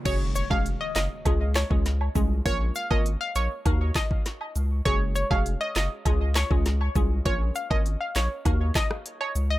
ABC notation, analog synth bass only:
X:1
M:4/4
L:1/16
Q:1/4=100
K:Gblyd
V:1 name="Analog synth bass" clef=bass
G,,,3 F,,,2 z G,,, z D,,3 D,,3 C,,2 | B,,,2 z A,,,2 z B,,, z E,,2 z4 D,,2 | G,,,3 F,,,2 z G,,, z D,,3 D,,3 C,,2 | B,,,2 z A,,,2 z B,,, z E,,2 z4 D,,2 |]